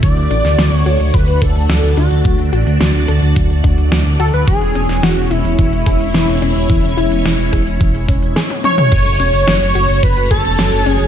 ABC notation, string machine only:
X:1
M:4/4
L:1/8
Q:1/4=108
K:F#m
V:1 name="String machine"
[A,DFd]8- | [A,DFd]8 | [G,CEc]8- | [G,CEc]8 |
[A,CFc]8 |]